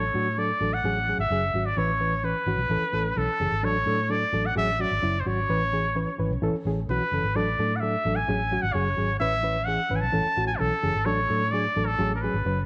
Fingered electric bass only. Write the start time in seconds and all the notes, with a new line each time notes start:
0.14 A2
0.61 A1
0.84 A1
1.18 G#1
1.30 F#1
1.54 G#1
1.77 A1
2.46 G#1
2.57 B1
2.69 A1
2.93 A1
3.17 B1
3.40 F#1
3.52 G#1
3.63 A1
3.86 A2
4.33 A1
4.56 A1
4.91 G#1
5.03 F#1
5.26 G#1
5.49 A1
6.19 G#1
6.31 B1
6.42 A1
6.54 muted fingered electric bass stroke
6.65 A1
6.89 B1
7.12 F#1
7.24 G#1
7.35 A1
7.59 A2
8.05 A1
8.28 A1
8.63 G#1
8.75 F#1
8.98 G#1
9.21 A1
9.91 G#1
10.02 B1
10.14 A1
10.25 muted fingered electric bass stroke
10.37 A1
10.61 B1
10.83 F#1
10.95 G#1
11.06 A1
11.30 A2
11.77 A1
11.99 A1
12.34 G#1
12.45 F#1